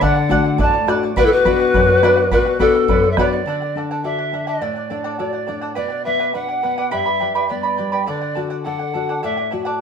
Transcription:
0.01 D3 A4 D5 F#5, bombo low
0.16 D5 F#5
0.29 A3 D4 F#4 A4 D5 F#5, bombo low
0.44 D5 F#5
0.58 A2 A4 D5 E5 F#5 A5, bombo low
0.64 D5
0.73 D5 F#5
0.87 A3 D4 F#4 A4 D5 F#5, bombo rim
1.03 D5 F#5
1.16 B2 F#4 B4 D5 F#5, bombo low
1.24 E4 A4
1.31 F#4 B4 D5 F#5
1.45 B3 D4 F#4 B4 D5 F#5, bombo low
1.60 D5 F#5
1.74 F#2 B4 D5 F#5, bombo low
1.88 D5 F#5
2.02 B3 D4 F#4 B4 D5 F#5, bombo rim
2.17 D5 F#5
2.31 B2 F#4 B4 D5 F#5, bombo low
2.46 D5 F#5
2.59 B3 D4 F#4 A4 B4 D5 F#5, bombo low
2.75 D5 F#5
2.88 F#2 B4 D5 F#5, bombo low
3.04 D5 F#5
3.11 E5
3.17 B3 D4 F#4 B4 D5 F#5, bombo rim, bombo low
3.32 D5 F#5
3.46 D3 A4 D5 F#5
3.62 D5 F#5
3.76 D4 A4 D5 F#5
3.91 A4 D5 F#5
4.04 F#4 A4 D5 E5 F#5
4.19 D5 F#5
4.33 D4 A4 D5 F#5
4.47 A4 D5 F#5
4.61 A2 A4 D5 F#5
4.76 D5 F#5
4.90 D4 A4 D5 F#5
5.04 A4 D5 F#5
5.19 F#4 A4 D5 F#5
5.33 D5 F#5
5.47 D4 A4 D5 F#5
5.62 A4 D5 F#5
5.75 B2 B4 D5 F#5
5.90 D5 F#5
6.05 B3 B4 D5 E5 F#5
6.19 B4 D5 F#5
6.34 D4 B4 D5 F#5
6.48 D5 F#5
6.63 B3 B4 D5 F#5
6.78 B4 D5 F#5
6.91 G2 G4 B4 D5 E5 G5 B5
7.06 B4 D5 B5
7.20 G3 B4 D5 G5 B5
7.35 G4 B4 D5 G5 B5
7.49 B3 B4 D5 G5 B5
7.63 B4 D5 B5
7.77 G3 B4 D5 G5 B5
7.92 G4 B4 D5 G5 B5
8.06 D3 A4 D5 F#5
8.21 D5 F#5
8.35 F#4 A4 D5 F#5
8.50 A4 D5 F#5
8.65 A4 D5 F#5
8.79 D5 F#5
8.94 F#4 A4 D5 F#5
9.09 A4 D5 F#5
9.23 A2 A4 D5 E5 F#5
9.37 D5 F#5
9.51 F#4 A4 D5 F#5
9.65 A4 D5 F#5

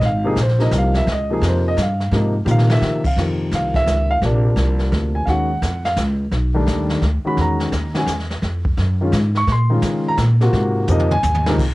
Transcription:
0.01 G#1, brush sweep, kick, snare
0.05 F5
0.24 C3 F3 A#3 D#4 G#4
0.36 A#1, kick, snare, hi-hat pedal
0.41 C5
0.48 snare
0.58 C3 F3 A#3 D#4 D#5, snare
0.71 C2, kick, snare, hi-hat pedal
0.78 F5
0.94 E5, snare
1.07 C#2, brush sweep, kick, snare
1.12 D#5
1.30 C3 F3 A#3 D#4 G#4
1.42 F2, kick, snare, hi-hat pedal
1.48 C5
1.68 D#5
1.77 G2, kick, snare, hi-hat pedal
1.82 F5
2.00 snare
2.12 G#2 C3 F3 A#3 D#4, brush sweep, kick, snare
2.45 A#2 C3 D#3 F3 A#3, hi-hat pedal, mid tom
2.51 F5
2.59 snare
2.70 E5, snare
2.81 C3, snare
3.04 F5, kick, crash
3.16 F2 C3 D#3 F3 A#3, brush sweep, kick, snare
3.52 C2 F5, kick, snare, hi-hat pedal
3.74 E5, kick, snare
3.86 C#2, kick, snare, hi-hat pedal
4.11 F5
4.22 A#1 C3 F3 A#3 D4, brush sweep, kick, snare
4.56 C2, kick, snare, hi-hat pedal
4.79 snare
4.92 D2, kick, snare
5.15 G#5
5.26 D#2 D#3 G#3 C#4 F#4 F5 F#5, brush sweep, kick, snare
5.62 F2, kick, snare, hi-hat pedal
5.85 F5, snare
5.97 C#2, kick, snare, hi-hat pedal
6.31 B1, brush sweep, kick, snare
6.54 D#3 G3 A3 D4
6.66 D#2, kick, snare, hi-hat pedal
6.89 snare
7.01 D2, kick, snare
7.24 D#3 G#3 C#4 F#4 B5, muted upright bass stroke
7.37 E2, brush sweep, kick, snare
7.41 A#5
7.60 snare
7.72 D#2, kick, snare, hi-hat pedal
7.94 D#3 G#3 C#4 F#4 G#5, snare
8.06 E2, kick, snare, hi-hat pedal
8.19 snare
8.30 snare
8.42 F2, brush sweep, kick, snare
8.65 kick
8.77 F#2, kick, snare
9.01 D#3 G#3 C#4 F4
9.12 G#2, kick, snare, hi-hat pedal
9.35 C#6, snare
9.47 A#2, brush sweep, kick, snare
9.52 C6
9.70 D#3 G#3 C#4 F4
9.82 C#3, kick, snare, hi-hat pedal
10.08 A#5
10.18 A#2, kick, snare, hi-hat pedal
10.41 C3 A#3 F4 F#4, snare
10.53 G#2, brush sweep, kick, snare
10.88 F2 C3 F3 A#3 D#4 D#5, hi-hat pedal, mid tom
10.99 mid tom
11.11 G#5, mid tom
11.23 D#2, floor tom, hi-hat pedal
11.34 floor tom
11.46 C#2 C3 F3 A#3 D#4, snare
11.58 brush sweep, kick, snare, crash

